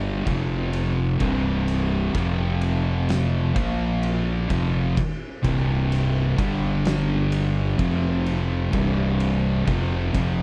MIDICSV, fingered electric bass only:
0, 0, Header, 1, 2, 480
1, 0, Start_track
1, 0, Tempo, 940439
1, 614, Time_signature, 4, 2, 24, 8
1, 5321, End_track
2, 0, Start_track
2, 0, Title_t, "Fingered electric bass"
2, 0, Program_c, 0, 33
2, 0, Note_on_c, 0, 31, 97
2, 115, Note_off_c, 0, 31, 0
2, 136, Note_on_c, 0, 29, 100
2, 595, Note_off_c, 0, 29, 0
2, 617, Note_on_c, 0, 24, 98
2, 1075, Note_off_c, 0, 24, 0
2, 1096, Note_on_c, 0, 29, 98
2, 1795, Note_off_c, 0, 29, 0
2, 1817, Note_on_c, 0, 34, 89
2, 2275, Note_off_c, 0, 34, 0
2, 2298, Note_on_c, 0, 29, 97
2, 2520, Note_off_c, 0, 29, 0
2, 2777, Note_on_c, 0, 24, 97
2, 3235, Note_off_c, 0, 24, 0
2, 3256, Note_on_c, 0, 31, 90
2, 3954, Note_off_c, 0, 31, 0
2, 3975, Note_on_c, 0, 29, 94
2, 4434, Note_off_c, 0, 29, 0
2, 4457, Note_on_c, 0, 24, 99
2, 4915, Note_off_c, 0, 24, 0
2, 4935, Note_on_c, 0, 29, 91
2, 5158, Note_off_c, 0, 29, 0
2, 5177, Note_on_c, 0, 29, 96
2, 5321, Note_off_c, 0, 29, 0
2, 5321, End_track
0, 0, End_of_file